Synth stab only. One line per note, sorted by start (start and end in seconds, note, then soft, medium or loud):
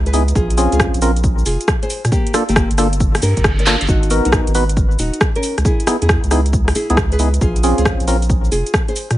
0.14 0.23 B3 medium
0.14 0.23 D#4 medium
0.14 0.23 E4 medium
0.14 0.23 G#4 medium
0.58 1.00 C4 medium
0.58 1.00 C#4 medium
0.58 1.00 F4 medium
0.58 1.00 G#4 loud
1.02 1.11 C4 medium
1.02 1.11 C#4 medium
1.02 1.11 F4 medium
1.02 1.11 A#4 medium
2.34 2.43 A#3 loud
2.34 2.43 D4 medium
2.34 2.43 F4 medium
2.34 2.43 A4 loud
2.78 2.87 A#3 loud
2.78 2.87 D4 medium
2.78 2.87 F4 medium
2.78 2.87 A4 loud
3.66 3.76 A#3 medium
3.66 3.76 D4 medium
3.66 3.76 F4 medium
3.66 3.76 A4 medium
4.11 4.53 B3 medium
4.11 4.53 D#4 medium
4.11 4.53 F#4 medium
4.11 4.53 A#4 loud
4.55 4.64 B3 medium
4.55 4.64 D#4 medium
4.55 4.64 F#4 medium
4.55 4.64 B4 loud
5.87 5.96 B3 medium
5.87 5.96 D#4 medium
5.87 5.96 E4 medium
5.87 5.96 G#4 loud
6.31 6.40 B3 loud
6.31 6.40 D#4 medium
6.31 6.40 E4 medium
6.31 6.40 G#4 loud
6.90 6.97 B3 medium
6.90 6.97 D#4 medium
6.90 6.97 E4 medium
6.90 6.97 G#4 loud
7.19 7.29 B3 medium
7.19 7.29 D#4 medium
7.19 7.29 E4 medium
7.19 7.29 G#4 medium
7.63 8.06 C4 medium
7.63 8.06 C#4 medium
7.63 8.06 F4 medium
7.63 8.06 G#4 loud
8.08 8.17 C4 medium
8.08 8.17 C#4 medium
8.08 8.17 F4 medium
8.08 8.17 A#4 medium